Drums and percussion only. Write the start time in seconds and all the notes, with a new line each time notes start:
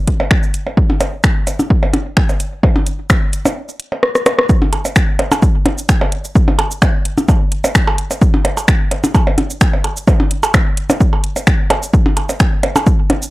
0.07 kick, closed hi-hat
0.20 percussion blips
0.31 finger snap, kick
0.43 cabasa
0.54 closed hi-hat, cabasa
0.67 percussion blips
0.77 kick
0.90 percussion blips
1.01 closed hi-hat, percussion blips, cabasa
1.24 finger snap, kick, cabasa
1.47 closed hi-hat, percussion blips, cabasa
1.59 percussion blips, cabasa
1.70 kick
1.83 percussion blips
1.94 closed hi-hat, percussion blips
2.17 finger snap, kick
2.29 percussion blips, cabasa
2.40 closed hi-hat, cabasa
2.63 kick, percussion blips
2.76 percussion blips
2.87 closed hi-hat, cabasa
3.10 finger snap, kick, percussion blips, cabasa
3.33 closed hi-hat, cabasa
3.45 percussion blips, cabasa
3.69 cabasa
3.80 closed hi-hat
3.92 percussion blips
4.03 cross-stick
4.15 cross-stick, cabasa
4.26 cross-stick, closed hi-hat, percussion blips, cabasa
4.39 cross-stick
4.49 kick, cabasa
4.62 percussion blips
4.73 closed hi-hat, percussion blips
4.85 percussion blips, cabasa
4.96 finger snap, kick, cabasa
5.19 closed hi-hat, percussion blips
5.32 percussion blips, cabasa
5.42 kick, cabasa
5.66 closed hi-hat, percussion blips
5.78 cabasa
5.89 finger snap, kick, cabasa
6.01 percussion blips
6.12 closed hi-hat
6.25 cabasa
6.35 kick, cabasa
6.48 percussion blips
6.59 closed hi-hat, percussion blips
6.71 cabasa
6.82 finger snap, kick, percussion blips, cabasa
7.05 closed hi-hat
7.18 percussion blips, cabasa
7.28 kick, percussion blips, cabasa
7.52 closed hi-hat
7.64 percussion blips, cabasa
7.75 finger snap, kick, cabasa
7.87 percussion blips
7.98 closed hi-hat
8.11 percussion blips, cabasa
8.22 kick, cabasa
8.34 percussion blips
8.45 closed hi-hat, percussion blips
8.57 percussion blips, cabasa
8.68 finger snap, kick, cabasa
8.91 closed hi-hat, percussion blips
9.04 percussion blips, cabasa
9.15 kick, percussion blips, cabasa
9.27 percussion blips
9.38 closed hi-hat, percussion blips
9.50 cabasa
9.61 finger snap, kick, cabasa
9.73 percussion blips
9.84 closed hi-hat, percussion blips
9.97 cabasa
10.07 kick, percussion blips, cabasa
10.20 percussion blips
10.31 closed hi-hat
10.43 percussion blips, cabasa
10.54 finger snap, kick, percussion blips, cabasa
10.77 closed hi-hat
10.90 percussion blips, cabasa
11.01 kick, cabasa
11.13 percussion blips
11.24 closed hi-hat
11.36 percussion blips, cabasa
11.47 finger snap, kick, cabasa
11.70 closed hi-hat, percussion blips
11.83 cabasa
11.93 kick, cabasa
12.06 percussion blips
12.17 closed hi-hat, percussion blips
12.29 percussion blips, cabasa
12.40 finger snap, kick, cabasa
12.63 closed hi-hat, percussion blips
12.76 percussion blips, cabasa
12.87 kick, cabasa
13.10 closed hi-hat, percussion blips
13.22 cabasa